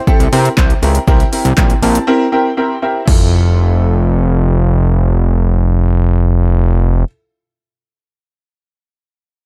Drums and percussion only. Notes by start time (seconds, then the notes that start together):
0.07 kick, shaker
0.20 closed hi-hat, shaker
0.33 open hi-hat, shaker
0.45 closed hi-hat, shaker
0.57 kick, snare, clap, shaker
0.70 closed hi-hat, shaker
0.83 open hi-hat, shaker
0.95 closed hi-hat, shaker
1.08 kick, shaker
1.20 closed hi-hat, shaker
1.33 open hi-hat, shaker
1.45 closed hi-hat, shaker
1.57 kick, snare, clap, shaker
1.70 closed hi-hat, shaker
1.83 open hi-hat, shaker
1.95 closed hi-hat, shaker
3.08 kick, crash